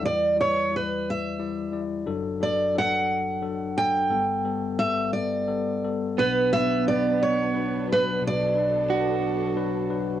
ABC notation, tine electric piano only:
X:1
M:6/8
L:1/8
Q:3/8=59
K:Bm
V:1 name="Tine electric piano"
[G,Ed] [G,Ed] [G,Ed] z [G,Ed] [G,Ed] | [F,DA] [F,DA] [F,DA] z [F,DA] [F,DA] | [G,B,A] [G,B,A] [G,B,A] z [G,B,A] [G,B,A] | [F,DB] [F,DB] [F,DB] z [F,DB] [F,DB] |
z [F,DB] [F,DB] z [F,DB] [F,DB] |]
V:2 name="Tine electric piano" clef=bass
[E,,E,]6 | [F,,,F,,]6 | [G,,,G,,]6 | [B,,,B,,]6 |
[B,,,B,,]6 |]